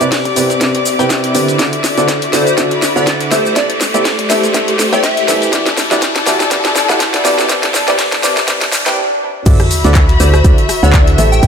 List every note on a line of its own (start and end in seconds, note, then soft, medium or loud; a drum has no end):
0.00 0.18 C3 medium
0.00 1.59 C4 medium
0.00 0.42 E4 medium
0.00 0.18 E4 medium
0.00 1.59 G4 medium
0.00 0.18 G4 medium
0.00 0.42 A4 medium
0.00 0.18 B4 medium
0.00 0.18 C5 medium
0.00 0.42 D5 medium
0.00 8.97 D5 medium
0.00 0.18 D5 loud
0.00 6.32 E5 medium
0.00 0.30 F#5 medium
0.00 8.97 D6 medium
0.00 closed hi-hat soft
0.00 riser medium
0.00 shaker soft
0.12 kick loud
0.12 snare medium
0.12 snare loud
0.12 closed hi-hat medium
0.12 open hi-hat medium
0.12 shaker soft
0.25 kick medium
0.25 closed hi-hat medium
0.36 0.49 C3 medium
0.36 0.49 E4 medium
0.36 0.49 G4 medium
0.36 0.49 B4 medium
0.36 0.49 C5 medium
0.36 0.49 D5 medium
0.36 open hi-hat loud
0.36 shaker medium
0.50 snare medium
0.50 closed hi-hat soft
0.50 shaker soft
0.61 0.73 C3 medium
0.61 0.73 E4 medium
0.61 0.73 G4 medium
0.61 0.73 B4 medium
0.61 0.73 C5 medium
0.61 0.73 D5 medium
0.61 kick loud
0.61 snare medium
0.61 closed hi-hat medium
0.61 shaker medium
0.61 shaker soft
0.75 snare soft
0.75 closed hi-hat soft
0.86 open hi-hat loud
0.86 shaker medium
0.99 1.32 C3 medium
0.99 1.32 E4 medium
0.99 1.32 G4 medium
0.99 1.32 B4 medium
0.99 1.32 C5 medium
0.99 1.32 G5 loud
0.99 closed hi-hat soft
0.99 shaker soft
1.10 kick loud
1.10 snare medium
1.10 snare loud
1.10 closed hi-hat medium
1.10 shaker medium
1.10 shaker soft
1.24 snare soft
1.24 closed hi-hat soft
1.35 1.57 D3 medium
1.35 1.57 E4 medium
1.35 1.57 G4 medium
1.35 1.57 B4 medium
1.35 1.57 C5 medium
1.35 1.57 D5 loud
1.35 open hi-hat loud
1.35 shaker medium
1.48 closed hi-hat soft
1.48 shaker soft
1.59 1.72 D3 medium
1.59 3.31 D3 medium
1.59 1.72 E4 medium
1.59 1.72 F#4 medium
1.59 1.72 A4 medium
1.59 1.72 C5 medium
1.59 1.72 D5 loud
1.59 kick loud
1.59 snare medium
1.59 closed hi-hat medium
1.59 shaker medium
1.59 shaker soft
1.73 closed hi-hat soft
1.79 3.31 F#4 medium
1.84 snare medium
1.84 open hi-hat loud
1.84 shaker medium
1.97 2.15 D3 medium
1.97 2.15 E4 medium
1.97 2.15 F#4 medium
1.97 2.15 A4 medium
1.97 2.15 C5 medium
1.97 2.15 D5 loud
1.97 snare soft
1.97 closed hi-hat soft
1.97 shaker soft
2.08 kick loud
2.08 snare medium
2.08 snare loud
2.08 closed hi-hat medium
2.08 shaker medium
2.08 shaker soft
2.22 closed hi-hat soft
2.33 2.45 D3 medium
2.33 2.45 E4 medium
2.33 2.45 F#4 medium
2.33 2.45 A4 medium
2.33 2.42 C5 medium
2.33 2.45 C5 medium
2.33 2.45 D5 medium
2.33 snare medium
2.33 snare soft
2.33 open hi-hat loud
2.33 shaker medium
2.37 3.31 B5 medium
2.47 2.54 C5 medium
2.47 closed hi-hat soft
2.47 shaker soft
2.58 2.70 D3 medium
2.58 2.70 E4 medium
2.58 2.70 F#4 medium
2.58 2.70 A4 medium
2.58 2.70 C5 medium
2.58 2.70 D5 loud
2.58 kick loud
2.58 snare medium
2.58 closed hi-hat medium
2.58 shaker medium
2.58 shaker soft
2.71 snare soft
2.71 closed hi-hat soft
2.82 snare medium
2.82 snare soft
2.82 open hi-hat loud
2.82 shaker medium
2.96 3.29 D3 loud
2.96 3.29 E4 medium
2.96 3.29 F#4 medium
2.96 3.29 A4 medium
2.96 3.29 C5 medium
2.96 3.11 D5 medium
2.96 3.29 F#5 loud
2.96 shaker soft
3.07 kick loud
3.07 snare medium
3.07 snare loud
3.07 closed hi-hat medium
3.07 shaker medium
3.07 shaker soft
3.21 snare soft
3.21 closed hi-hat medium
3.31 3.53 A3 medium
3.31 5.53 A3 medium
3.31 3.53 E4 medium
3.31 3.53 G4 medium
3.31 3.53 A4 medium
3.31 3.40 C5 medium
3.31 3.53 C5 medium
3.31 3.53 E5 loud
3.31 snare medium
3.31 open hi-hat loud
3.31 shaker medium
3.45 3.52 C5 medium
3.45 shaker soft
3.56 3.68 A3 medium
3.56 3.68 E4 medium
3.56 3.68 G4 medium
3.56 3.68 A4 medium
3.56 3.68 C5 medium
3.56 3.73 D5 medium
3.56 3.68 E5 loud
3.56 kick loud
3.56 snare medium
3.56 closed hi-hat medium
3.56 shaker medium
3.56 shaker soft
3.67 6.32 G4 medium
3.67 closed hi-hat medium
3.81 snare medium
3.81 open hi-hat loud
3.81 shaker medium
3.94 4.11 A3 medium
3.94 4.11 E4 medium
3.94 4.11 G4 medium
3.94 4.11 A4 medium
3.94 4.11 C5 medium
3.94 5.53 C5 medium
3.94 4.11 D5 loud
3.94 closed hi-hat soft
3.94 shaker soft
4.05 kick loud
4.05 snare medium
4.05 snare loud
4.05 closed hi-hat medium
4.05 open hi-hat medium
4.05 shaker soft
4.19 kick medium
4.19 closed hi-hat medium
4.30 4.42 A3 medium
4.30 4.42 E4 medium
4.30 4.42 G4 medium
4.30 4.42 A4 medium
4.30 4.42 C5 medium
4.30 4.42 E5 medium
4.30 snare medium
4.30 open hi-hat loud
4.30 shaker medium
4.43 snare medium
4.43 closed hi-hat soft
4.43 shaker soft
4.54 4.67 A3 medium
4.54 4.67 E4 medium
4.54 4.67 G4 medium
4.54 4.67 A4 medium
4.54 4.67 C5 medium
4.54 4.67 E5 loud
4.54 kick loud
4.54 snare medium
4.54 closed hi-hat medium
4.54 shaker medium
4.54 shaker soft
4.68 snare soft
4.68 closed hi-hat medium
4.79 snare medium
4.79 open hi-hat loud
4.79 shaker medium
4.93 5.26 A3 loud
4.93 5.26 E4 medium
4.93 5.26 G4 medium
4.93 5.26 A4 medium
4.93 5.26 C5 medium
4.93 5.01 D5 medium
4.93 5.26 G5 loud
4.93 closed hi-hat soft
4.93 shaker soft
5.03 5.42 E5 medium
5.03 kick loud
5.03 snare medium
5.03 snare loud
5.03 closed hi-hat medium
5.03 shaker medium
5.03 shaker soft
5.17 snare soft
5.17 closed hi-hat medium
5.28 5.50 E3 medium
5.28 5.50 E4 medium
5.28 5.50 G4 medium
5.28 5.50 A4 medium
5.28 5.50 C5 medium
5.28 5.50 E5 loud
5.28 snare medium
5.28 open hi-hat loud
5.28 shaker medium
5.42 closed hi-hat soft
5.42 shaker soft
5.53 5.65 E3 medium
5.53 5.65 E4 medium
5.53 8.97 E4 medium
5.53 5.65 F#4 medium
5.53 5.65 G4 medium
5.53 5.65 B4 medium
5.53 5.65 D5 loud
5.53 kick loud
5.53 snare medium
5.53 closed hi-hat medium
5.53 shaker medium
5.53 shaker soft
5.66 8.97 A4 medium
5.66 snare medium
5.66 closed hi-hat medium
5.77 snare medium
5.77 open hi-hat medium
5.77 shaker medium
5.91 6.08 E3 medium
5.91 6.08 E4 medium
5.91 6.08 F#4 medium
5.91 6.08 G4 medium
5.91 6.08 B4 medium
5.91 6.08 D5 loud
5.91 snare medium
5.91 snare soft
5.91 closed hi-hat soft
5.91 shaker soft
6.02 kick loud
6.02 snare medium
6.02 snare loud
6.02 closed hi-hat medium
6.02 shaker medium
6.02 shaker soft
6.16 8.97 D5 medium
6.16 snare medium
6.16 closed hi-hat medium
6.16 closed hi-hat soft
6.26 6.39 E3 medium
6.26 6.39 E4 medium
6.26 6.39 F#4 medium
6.26 6.39 G4 medium
6.26 6.39 B4 medium
6.26 6.39 D5 medium
6.26 snare medium
6.26 snare soft
6.26 open hi-hat loud
6.26 shaker medium
6.40 snare medium
6.40 closed hi-hat soft
6.40 shaker soft
6.51 6.63 E3 medium
6.51 6.63 E4 medium
6.51 6.63 F#4 medium
6.51 6.63 G4 medium
6.51 6.63 B4 medium
6.51 6.63 D5 loud
6.51 kick loud
6.51 snare loud
6.51 closed hi-hat medium
6.51 shaker medium
6.51 shaker soft
6.65 snare medium
6.65 closed hi-hat medium
6.76 snare loud
6.76 snare soft
6.76 open hi-hat loud
6.76 shaker medium
6.89 7.22 E3 loud
6.89 7.22 E4 medium
6.89 7.22 F#4 medium
6.89 7.22 G4 medium
6.89 7.22 B4 medium
6.89 7.22 F#5 loud
6.89 snare medium
6.89 shaker soft
7.00 kick loud
7.00 snare loud
7.00 closed hi-hat medium
7.00 shaker medium
7.00 shaker soft
7.14 snare medium
7.14 snare soft
7.14 closed hi-hat medium
7.25 7.47 C3 loud
7.25 7.47 E4 medium
7.25 7.47 F#4 medium
7.25 7.47 G4 medium
7.25 7.47 B4 medium
7.25 7.47 D5 loud
7.25 snare loud
7.25 open hi-hat loud
7.25 shaker medium
7.38 snare medium
7.38 shaker soft
7.49 7.62 C3 medium
7.49 8.97 C3 medium
7.49 7.62 E4 medium
7.49 7.62 G4 medium
7.49 7.62 B4 medium
7.49 7.62 C5 medium
7.49 7.62 D5 loud
7.49 kick loud
7.49 snare loud
7.49 closed hi-hat medium
7.49 shaker medium
7.49 shaker soft
7.63 snare medium
7.63 closed hi-hat medium
7.74 snare loud
7.74 open hi-hat loud
7.74 shaker medium
7.88 8.05 C3 medium
7.88 8.05 E4 medium
7.88 8.05 G4 medium
7.88 8.05 B4 medium
7.88 8.05 C5 medium
7.88 8.05 D5 loud
7.88 snare medium
7.88 closed hi-hat soft
7.88 shaker soft
7.99 kick loud
7.99 snare loud
7.99 closed hi-hat medium
7.99 open hi-hat medium
7.99 shaker soft
8.12 kick medium
8.12 snare medium
8.12 closed hi-hat medium
8.23 8.36 C3 medium
8.23 8.36 E4 medium
8.23 8.36 G4 medium
8.23 8.36 B4 medium
8.23 8.36 C5 medium
8.23 8.36 D5 medium
8.23 snare loud
8.23 open hi-hat loud
8.23 shaker medium
8.37 snare medium
8.37 closed hi-hat soft
8.37 shaker soft
8.48 8.60 C3 medium
8.48 8.60 E4 medium
8.48 8.60 G4 medium
8.48 8.60 B4 medium
8.48 8.60 C5 medium
8.48 8.60 D5 loud
8.48 kick loud
8.48 snare loud
8.48 closed hi-hat medium
8.48 swell medium
8.48 shaker medium
8.48 shaker soft
8.61 snare loud
8.61 snare medium
8.61 closed hi-hat medium
8.72 snare loud
8.72 open hi-hat loud
8.72 shaker medium
8.86 8.97 C3 loud
8.86 8.97 E4 medium
8.86 8.97 G4 medium
8.86 8.97 B4 medium
8.86 8.97 C5 medium
8.86 8.97 G5 loud
8.86 snare medium
8.86 closed hi-hat soft
8.86 shaker soft
9.46 9.56 D2 loud
9.46 9.58 D3 medium
9.46 9.58 E4 medium
9.46 9.58 F#4 medium
9.46 11.18 F#4 medium
9.46 9.58 A4 medium
9.46 9.58 C5 medium
9.46 9.58 D5 loud
9.46 11.47 E5 medium
9.46 11.47 E6 medium
9.46 kick loud
9.46 closed hi-hat medium
9.46 ride medium
9.46 crash loud
9.46 sub drop medium
9.46 shaker medium
9.46 shaker soft
9.58 11.18 B5 medium
9.58 cross-stick medium
9.58 closed hi-hat medium
9.65 11.47 E5 medium
9.71 open hi-hat loud
9.71 ride medium
9.71 shaker medium
9.84 10.18 D2 loud
9.84 10.01 D3 medium
9.84 10.01 E4 medium
9.84 10.01 F#4 medium
9.84 10.01 A4 medium
9.84 10.01 C5 medium
9.84 10.01 D5 loud
9.84 snare soft
9.84 closed hi-hat soft
9.84 shaker soft
9.95 kick loud
9.95 snare loud
9.95 clap loud
9.95 closed hi-hat medium
9.95 ride medium
9.95 shaker medium
9.95 shaker soft
10.09 closed hi-hat medium
10.09 closed hi-hat soft
10.20 10.42 D2 loud
10.20 10.32 D3 medium
10.20 10.32 E4 medium
10.20 10.32 F#4 medium
10.20 10.32 A4 medium
10.20 10.32 C5 medium
10.20 10.29 C5 medium
10.20 10.32 D5 medium
10.20 snare soft
10.20 open hi-hat loud
10.20 ride medium
10.20 shaker medium
10.34 10.41 C5 medium
10.34 cross-stick medium
10.34 closed hi-hat soft
10.34 shaker soft
10.44 10.54 D2 loud
10.44 10.57 D3 medium
10.44 10.57 E4 medium
10.44 10.57 F#4 medium
10.44 10.57 A4 medium
10.44 10.57 C5 medium
10.44 10.57 D5 loud
10.44 kick loud
10.44 closed hi-hat medium
10.44 ride medium
10.44 shaker medium
10.44 shaker soft
10.58 snare soft
10.58 closed hi-hat medium
10.69 cross-stick medium
10.69 snare soft
10.69 open hi-hat loud
10.69 ride medium
10.69 shaker medium
10.83 11.16 D2 medium
10.83 11.16 D3 medium
10.83 11.16 E4 medium
10.83 11.16 F#4 medium
10.83 11.16 A4 medium
10.83 11.16 C5 medium
10.83 10.98 D5 medium
10.83 11.16 F#5 loud
10.83 shaker soft
10.93 kick loud
10.93 snare loud
10.93 clap loud
10.93 closed hi-hat medium
10.93 ride medium
10.93 shaker medium
10.93 shaker soft
11.07 snare soft
11.07 closed hi-hat medium
11.18 11.41 A1 loud
11.18 11.40 A3 medium
11.18 11.40 E4 medium
11.18 11.47 G4 medium
11.18 11.40 G4 medium
11.18 11.40 A4 medium
11.18 11.40 C5 medium
11.18 11.40 E5 loud
11.18 open hi-hat loud
11.18 ride medium
11.18 shaker medium
11.32 11.47 G5 loud
11.32 shaker soft
11.43 11.47 A1 loud
11.43 11.47 A3 medium
11.43 11.47 E4 medium
11.43 11.47 G4 medium
11.43 11.47 A4 medium
11.43 11.47 C5 medium
11.43 11.47 E5 loud
11.43 kick loud
11.43 closed hi-hat medium
11.43 ride medium
11.43 shaker medium
11.43 shaker soft